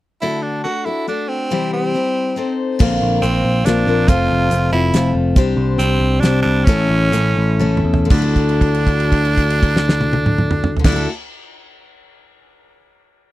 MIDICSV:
0, 0, Header, 1, 5, 480
1, 0, Start_track
1, 0, Tempo, 428266
1, 253, Time_signature, 3, 2, 24, 8
1, 6491, Tempo, 446761
1, 7931, Tempo, 485437
1, 8891, Tempo, 508475
1, 13816, End_track
2, 0, Start_track
2, 0, Title_t, "Steel-string acoustic guitar"
2, 0, Program_c, 0, 25
2, 244, Note_on_c, 0, 50, 55
2, 248, Note_on_c, 0, 57, 55
2, 251, Note_on_c, 0, 62, 64
2, 254, Note_on_c, 0, 66, 63
2, 259, Note_on_c, 0, 69, 72
2, 711, Note_off_c, 0, 57, 0
2, 717, Note_off_c, 0, 62, 0
2, 725, Note_off_c, 0, 66, 0
2, 725, Note_on_c, 0, 57, 39
2, 730, Note_on_c, 0, 62, 43
2, 732, Note_off_c, 0, 50, 0
2, 733, Note_off_c, 0, 69, 0
2, 739, Note_on_c, 0, 66, 50
2, 747, Note_on_c, 0, 69, 46
2, 947, Note_off_c, 0, 69, 0
2, 959, Note_off_c, 0, 66, 0
2, 961, Note_on_c, 0, 69, 40
2, 971, Note_off_c, 0, 62, 0
2, 972, Note_off_c, 0, 57, 0
2, 972, Note_on_c, 0, 66, 33
2, 985, Note_on_c, 0, 62, 32
2, 1196, Note_off_c, 0, 62, 0
2, 1205, Note_on_c, 0, 57, 42
2, 1206, Note_off_c, 0, 66, 0
2, 1210, Note_on_c, 0, 62, 43
2, 1211, Note_off_c, 0, 69, 0
2, 1219, Note_on_c, 0, 66, 54
2, 1225, Note_on_c, 0, 69, 54
2, 1686, Note_on_c, 0, 48, 54
2, 1692, Note_off_c, 0, 57, 0
2, 1693, Note_on_c, 0, 52, 63
2, 1694, Note_off_c, 0, 62, 0
2, 1697, Note_off_c, 0, 66, 0
2, 1697, Note_on_c, 0, 55, 68
2, 1698, Note_on_c, 0, 60, 62
2, 1700, Note_off_c, 0, 69, 0
2, 1701, Note_on_c, 0, 64, 73
2, 1705, Note_on_c, 0, 72, 64
2, 2161, Note_off_c, 0, 55, 0
2, 2169, Note_off_c, 0, 60, 0
2, 2175, Note_off_c, 0, 48, 0
2, 2175, Note_off_c, 0, 64, 0
2, 2175, Note_on_c, 0, 55, 44
2, 2178, Note_off_c, 0, 52, 0
2, 2182, Note_on_c, 0, 60, 44
2, 2184, Note_off_c, 0, 72, 0
2, 2188, Note_on_c, 0, 64, 46
2, 2198, Note_on_c, 0, 72, 52
2, 2632, Note_off_c, 0, 60, 0
2, 2641, Note_off_c, 0, 55, 0
2, 2646, Note_on_c, 0, 60, 55
2, 2657, Note_on_c, 0, 63, 59
2, 2658, Note_off_c, 0, 64, 0
2, 2658, Note_off_c, 0, 72, 0
2, 2662, Note_on_c, 0, 69, 58
2, 2672, Note_on_c, 0, 72, 61
2, 3126, Note_on_c, 0, 46, 69
2, 3128, Note_off_c, 0, 60, 0
2, 3128, Note_on_c, 0, 50, 79
2, 3134, Note_on_c, 0, 58, 82
2, 3136, Note_off_c, 0, 69, 0
2, 3137, Note_off_c, 0, 63, 0
2, 3140, Note_on_c, 0, 65, 92
2, 3141, Note_off_c, 0, 72, 0
2, 3142, Note_on_c, 0, 60, 75
2, 3145, Note_on_c, 0, 70, 78
2, 3596, Note_off_c, 0, 58, 0
2, 3609, Note_on_c, 0, 58, 46
2, 3613, Note_off_c, 0, 46, 0
2, 3613, Note_off_c, 0, 60, 0
2, 3614, Note_off_c, 0, 50, 0
2, 3617, Note_on_c, 0, 60, 56
2, 3620, Note_off_c, 0, 65, 0
2, 3620, Note_off_c, 0, 70, 0
2, 3625, Note_on_c, 0, 65, 51
2, 3633, Note_on_c, 0, 70, 54
2, 4075, Note_off_c, 0, 58, 0
2, 4089, Note_on_c, 0, 58, 54
2, 4093, Note_off_c, 0, 60, 0
2, 4097, Note_on_c, 0, 60, 59
2, 4098, Note_off_c, 0, 65, 0
2, 4105, Note_off_c, 0, 70, 0
2, 4112, Note_on_c, 0, 65, 57
2, 4117, Note_on_c, 0, 70, 55
2, 4324, Note_off_c, 0, 70, 0
2, 4333, Note_off_c, 0, 58, 0
2, 4334, Note_off_c, 0, 65, 0
2, 4337, Note_off_c, 0, 60, 0
2, 4338, Note_on_c, 0, 70, 48
2, 4347, Note_on_c, 0, 65, 44
2, 4354, Note_on_c, 0, 60, 41
2, 4362, Note_on_c, 0, 58, 41
2, 4570, Note_off_c, 0, 60, 0
2, 4570, Note_on_c, 0, 53, 73
2, 4572, Note_off_c, 0, 65, 0
2, 4574, Note_off_c, 0, 58, 0
2, 4577, Note_off_c, 0, 70, 0
2, 4578, Note_on_c, 0, 57, 78
2, 4583, Note_on_c, 0, 60, 78
2, 4585, Note_on_c, 0, 65, 77
2, 4589, Note_on_c, 0, 69, 80
2, 5029, Note_off_c, 0, 57, 0
2, 5042, Note_on_c, 0, 57, 53
2, 5046, Note_off_c, 0, 60, 0
2, 5049, Note_off_c, 0, 65, 0
2, 5050, Note_on_c, 0, 60, 54
2, 5051, Note_off_c, 0, 53, 0
2, 5054, Note_off_c, 0, 69, 0
2, 5062, Note_on_c, 0, 65, 52
2, 5067, Note_on_c, 0, 69, 58
2, 5271, Note_off_c, 0, 69, 0
2, 5285, Note_off_c, 0, 65, 0
2, 5285, Note_on_c, 0, 69, 43
2, 5287, Note_off_c, 0, 57, 0
2, 5291, Note_off_c, 0, 60, 0
2, 5299, Note_on_c, 0, 65, 41
2, 5307, Note_on_c, 0, 60, 36
2, 5527, Note_off_c, 0, 60, 0
2, 5528, Note_off_c, 0, 69, 0
2, 5530, Note_on_c, 0, 57, 50
2, 5535, Note_off_c, 0, 65, 0
2, 5540, Note_on_c, 0, 60, 64
2, 5548, Note_on_c, 0, 65, 60
2, 5557, Note_on_c, 0, 69, 65
2, 5996, Note_off_c, 0, 60, 0
2, 6005, Note_off_c, 0, 57, 0
2, 6010, Note_on_c, 0, 60, 88
2, 6019, Note_off_c, 0, 65, 0
2, 6019, Note_on_c, 0, 62, 84
2, 6022, Note_off_c, 0, 69, 0
2, 6023, Note_on_c, 0, 67, 90
2, 6027, Note_on_c, 0, 72, 96
2, 6481, Note_off_c, 0, 60, 0
2, 6490, Note_off_c, 0, 62, 0
2, 6494, Note_on_c, 0, 60, 49
2, 6498, Note_off_c, 0, 67, 0
2, 6500, Note_off_c, 0, 72, 0
2, 6503, Note_on_c, 0, 62, 53
2, 6512, Note_on_c, 0, 67, 57
2, 6518, Note_on_c, 0, 72, 54
2, 6949, Note_off_c, 0, 60, 0
2, 6956, Note_off_c, 0, 62, 0
2, 6962, Note_on_c, 0, 60, 56
2, 6964, Note_off_c, 0, 67, 0
2, 6969, Note_on_c, 0, 62, 61
2, 6973, Note_off_c, 0, 72, 0
2, 6976, Note_on_c, 0, 67, 59
2, 6985, Note_on_c, 0, 72, 61
2, 7436, Note_on_c, 0, 45, 67
2, 7438, Note_on_c, 0, 52, 71
2, 7439, Note_off_c, 0, 60, 0
2, 7440, Note_off_c, 0, 62, 0
2, 7442, Note_off_c, 0, 67, 0
2, 7443, Note_on_c, 0, 57, 72
2, 7444, Note_on_c, 0, 61, 77
2, 7446, Note_on_c, 0, 64, 93
2, 7448, Note_off_c, 0, 72, 0
2, 7453, Note_on_c, 0, 69, 84
2, 7909, Note_off_c, 0, 57, 0
2, 7917, Note_off_c, 0, 61, 0
2, 7921, Note_on_c, 0, 57, 57
2, 7924, Note_off_c, 0, 64, 0
2, 7929, Note_on_c, 0, 61, 53
2, 7931, Note_off_c, 0, 45, 0
2, 7931, Note_off_c, 0, 52, 0
2, 7933, Note_off_c, 0, 69, 0
2, 7937, Note_on_c, 0, 64, 62
2, 7944, Note_on_c, 0, 69, 61
2, 8377, Note_off_c, 0, 57, 0
2, 8387, Note_off_c, 0, 61, 0
2, 8389, Note_on_c, 0, 57, 63
2, 8392, Note_off_c, 0, 64, 0
2, 8397, Note_off_c, 0, 69, 0
2, 8399, Note_on_c, 0, 61, 69
2, 8404, Note_on_c, 0, 64, 66
2, 8409, Note_on_c, 0, 69, 69
2, 8841, Note_on_c, 0, 50, 73
2, 8879, Note_off_c, 0, 57, 0
2, 8891, Note_off_c, 0, 61, 0
2, 8891, Note_on_c, 0, 57, 72
2, 8893, Note_off_c, 0, 64, 0
2, 8896, Note_off_c, 0, 69, 0
2, 8929, Note_on_c, 0, 64, 79
2, 8966, Note_on_c, 0, 66, 85
2, 9001, Note_on_c, 0, 69, 83
2, 11428, Note_off_c, 0, 50, 0
2, 11432, Note_on_c, 0, 50, 71
2, 11460, Note_off_c, 0, 64, 0
2, 11476, Note_off_c, 0, 57, 0
2, 11480, Note_on_c, 0, 57, 75
2, 11517, Note_on_c, 0, 64, 80
2, 11545, Note_off_c, 0, 66, 0
2, 11552, Note_on_c, 0, 66, 88
2, 11584, Note_off_c, 0, 69, 0
2, 11588, Note_on_c, 0, 69, 84
2, 11673, Note_off_c, 0, 50, 0
2, 11697, Note_off_c, 0, 57, 0
2, 11716, Note_off_c, 0, 64, 0
2, 11734, Note_off_c, 0, 66, 0
2, 11752, Note_off_c, 0, 69, 0
2, 13816, End_track
3, 0, Start_track
3, 0, Title_t, "Tenor saxophone"
3, 0, Program_c, 1, 66
3, 240, Note_on_c, 1, 64, 75
3, 474, Note_on_c, 1, 62, 67
3, 491, Note_off_c, 1, 64, 0
3, 706, Note_off_c, 1, 62, 0
3, 712, Note_on_c, 1, 66, 80
3, 958, Note_on_c, 1, 64, 76
3, 974, Note_off_c, 1, 66, 0
3, 1207, Note_off_c, 1, 64, 0
3, 1214, Note_on_c, 1, 62, 75
3, 1439, Note_on_c, 1, 60, 71
3, 1456, Note_off_c, 1, 62, 0
3, 1931, Note_off_c, 1, 60, 0
3, 1939, Note_on_c, 1, 60, 73
3, 2856, Note_off_c, 1, 60, 0
3, 3607, Note_on_c, 1, 60, 78
3, 4093, Note_on_c, 1, 62, 91
3, 4110, Note_off_c, 1, 60, 0
3, 4575, Note_on_c, 1, 65, 112
3, 4592, Note_off_c, 1, 62, 0
3, 5286, Note_off_c, 1, 65, 0
3, 5293, Note_on_c, 1, 64, 84
3, 5738, Note_off_c, 1, 64, 0
3, 6487, Note_on_c, 1, 60, 88
3, 6932, Note_on_c, 1, 62, 95
3, 6948, Note_off_c, 1, 60, 0
3, 7162, Note_off_c, 1, 62, 0
3, 7168, Note_on_c, 1, 62, 99
3, 7413, Note_on_c, 1, 61, 106
3, 7429, Note_off_c, 1, 62, 0
3, 8632, Note_off_c, 1, 61, 0
3, 8901, Note_on_c, 1, 62, 92
3, 11392, Note_off_c, 1, 62, 0
3, 11483, Note_on_c, 1, 62, 75
3, 11684, Note_off_c, 1, 62, 0
3, 13816, End_track
4, 0, Start_track
4, 0, Title_t, "Picked electric bass"
4, 0, Program_c, 2, 34
4, 3141, Note_on_c, 2, 34, 78
4, 3356, Note_off_c, 2, 34, 0
4, 3384, Note_on_c, 2, 34, 76
4, 3597, Note_off_c, 2, 34, 0
4, 3619, Note_on_c, 2, 34, 84
4, 3834, Note_off_c, 2, 34, 0
4, 3860, Note_on_c, 2, 34, 76
4, 4073, Note_off_c, 2, 34, 0
4, 4095, Note_on_c, 2, 34, 73
4, 4310, Note_off_c, 2, 34, 0
4, 4338, Note_on_c, 2, 34, 79
4, 4551, Note_off_c, 2, 34, 0
4, 4581, Note_on_c, 2, 29, 83
4, 4793, Note_off_c, 2, 29, 0
4, 4830, Note_on_c, 2, 29, 81
4, 5037, Note_off_c, 2, 29, 0
4, 5054, Note_on_c, 2, 29, 85
4, 5268, Note_off_c, 2, 29, 0
4, 5297, Note_on_c, 2, 29, 81
4, 5509, Note_off_c, 2, 29, 0
4, 5536, Note_on_c, 2, 29, 81
4, 5748, Note_off_c, 2, 29, 0
4, 5770, Note_on_c, 2, 29, 76
4, 5985, Note_off_c, 2, 29, 0
4, 6008, Note_on_c, 2, 36, 85
4, 6224, Note_off_c, 2, 36, 0
4, 6241, Note_on_c, 2, 36, 81
4, 6461, Note_off_c, 2, 36, 0
4, 6484, Note_on_c, 2, 36, 87
4, 6696, Note_off_c, 2, 36, 0
4, 6714, Note_on_c, 2, 36, 87
4, 6929, Note_off_c, 2, 36, 0
4, 6954, Note_on_c, 2, 36, 83
4, 7169, Note_off_c, 2, 36, 0
4, 7197, Note_on_c, 2, 36, 84
4, 7413, Note_off_c, 2, 36, 0
4, 7439, Note_on_c, 2, 33, 83
4, 7658, Note_off_c, 2, 33, 0
4, 7674, Note_on_c, 2, 33, 83
4, 7900, Note_off_c, 2, 33, 0
4, 7920, Note_on_c, 2, 33, 90
4, 8134, Note_off_c, 2, 33, 0
4, 8167, Note_on_c, 2, 33, 82
4, 8378, Note_off_c, 2, 33, 0
4, 8396, Note_on_c, 2, 33, 89
4, 8615, Note_off_c, 2, 33, 0
4, 8638, Note_on_c, 2, 40, 81
4, 8862, Note_off_c, 2, 40, 0
4, 8894, Note_on_c, 2, 38, 87
4, 11388, Note_off_c, 2, 38, 0
4, 11482, Note_on_c, 2, 38, 88
4, 11684, Note_off_c, 2, 38, 0
4, 13816, End_track
5, 0, Start_track
5, 0, Title_t, "Drums"
5, 3140, Note_on_c, 9, 49, 98
5, 3141, Note_on_c, 9, 36, 102
5, 3252, Note_off_c, 9, 49, 0
5, 3253, Note_off_c, 9, 36, 0
5, 3620, Note_on_c, 9, 42, 58
5, 3732, Note_off_c, 9, 42, 0
5, 4101, Note_on_c, 9, 42, 65
5, 4112, Note_on_c, 9, 38, 78
5, 4213, Note_off_c, 9, 42, 0
5, 4224, Note_off_c, 9, 38, 0
5, 4576, Note_on_c, 9, 42, 68
5, 4577, Note_on_c, 9, 36, 113
5, 4688, Note_off_c, 9, 42, 0
5, 4689, Note_off_c, 9, 36, 0
5, 5056, Note_on_c, 9, 42, 65
5, 5168, Note_off_c, 9, 42, 0
5, 5534, Note_on_c, 9, 42, 62
5, 5545, Note_on_c, 9, 38, 81
5, 5646, Note_off_c, 9, 42, 0
5, 5657, Note_off_c, 9, 38, 0
5, 6008, Note_on_c, 9, 42, 67
5, 6011, Note_on_c, 9, 36, 111
5, 6120, Note_off_c, 9, 42, 0
5, 6123, Note_off_c, 9, 36, 0
5, 6495, Note_on_c, 9, 42, 67
5, 6602, Note_off_c, 9, 42, 0
5, 6960, Note_on_c, 9, 42, 57
5, 6971, Note_on_c, 9, 38, 81
5, 7068, Note_off_c, 9, 42, 0
5, 7078, Note_off_c, 9, 38, 0
5, 7436, Note_on_c, 9, 42, 67
5, 7437, Note_on_c, 9, 36, 110
5, 7544, Note_off_c, 9, 42, 0
5, 7545, Note_off_c, 9, 36, 0
5, 7928, Note_on_c, 9, 42, 67
5, 8027, Note_off_c, 9, 42, 0
5, 8398, Note_on_c, 9, 48, 59
5, 8497, Note_off_c, 9, 48, 0
5, 8564, Note_on_c, 9, 45, 65
5, 8663, Note_off_c, 9, 45, 0
5, 8727, Note_on_c, 9, 43, 88
5, 8826, Note_off_c, 9, 43, 0
5, 8893, Note_on_c, 9, 36, 103
5, 8896, Note_on_c, 9, 49, 89
5, 8988, Note_off_c, 9, 36, 0
5, 8990, Note_off_c, 9, 49, 0
5, 9132, Note_on_c, 9, 36, 60
5, 9136, Note_on_c, 9, 49, 40
5, 9227, Note_off_c, 9, 36, 0
5, 9230, Note_off_c, 9, 49, 0
5, 9255, Note_on_c, 9, 57, 42
5, 9349, Note_off_c, 9, 57, 0
5, 9372, Note_on_c, 9, 36, 64
5, 9376, Note_on_c, 9, 49, 43
5, 9466, Note_off_c, 9, 36, 0
5, 9471, Note_off_c, 9, 49, 0
5, 9497, Note_on_c, 9, 57, 46
5, 9592, Note_off_c, 9, 57, 0
5, 9612, Note_on_c, 9, 36, 58
5, 9619, Note_on_c, 9, 49, 42
5, 9707, Note_off_c, 9, 36, 0
5, 9713, Note_off_c, 9, 49, 0
5, 9736, Note_on_c, 9, 57, 46
5, 9830, Note_off_c, 9, 57, 0
5, 9851, Note_on_c, 9, 36, 60
5, 9854, Note_on_c, 9, 49, 46
5, 9945, Note_off_c, 9, 36, 0
5, 9949, Note_off_c, 9, 49, 0
5, 9973, Note_on_c, 9, 57, 46
5, 10067, Note_off_c, 9, 57, 0
5, 10090, Note_on_c, 9, 36, 59
5, 10092, Note_on_c, 9, 49, 47
5, 10185, Note_off_c, 9, 36, 0
5, 10186, Note_off_c, 9, 49, 0
5, 10213, Note_on_c, 9, 57, 51
5, 10307, Note_off_c, 9, 57, 0
5, 10329, Note_on_c, 9, 36, 66
5, 10331, Note_on_c, 9, 49, 53
5, 10424, Note_off_c, 9, 36, 0
5, 10426, Note_off_c, 9, 49, 0
5, 10460, Note_on_c, 9, 38, 80
5, 10555, Note_off_c, 9, 38, 0
5, 10579, Note_on_c, 9, 38, 89
5, 10673, Note_off_c, 9, 38, 0
5, 10689, Note_on_c, 9, 48, 88
5, 10783, Note_off_c, 9, 48, 0
5, 10806, Note_on_c, 9, 48, 94
5, 10900, Note_off_c, 9, 48, 0
5, 10928, Note_on_c, 9, 47, 93
5, 11023, Note_off_c, 9, 47, 0
5, 11044, Note_on_c, 9, 47, 86
5, 11139, Note_off_c, 9, 47, 0
5, 11160, Note_on_c, 9, 45, 90
5, 11255, Note_off_c, 9, 45, 0
5, 11284, Note_on_c, 9, 45, 93
5, 11378, Note_off_c, 9, 45, 0
5, 11405, Note_on_c, 9, 43, 92
5, 11477, Note_on_c, 9, 49, 98
5, 11480, Note_on_c, 9, 36, 97
5, 11487, Note_on_c, 9, 38, 89
5, 11499, Note_off_c, 9, 43, 0
5, 11572, Note_off_c, 9, 49, 0
5, 11574, Note_off_c, 9, 36, 0
5, 11581, Note_off_c, 9, 38, 0
5, 13816, End_track
0, 0, End_of_file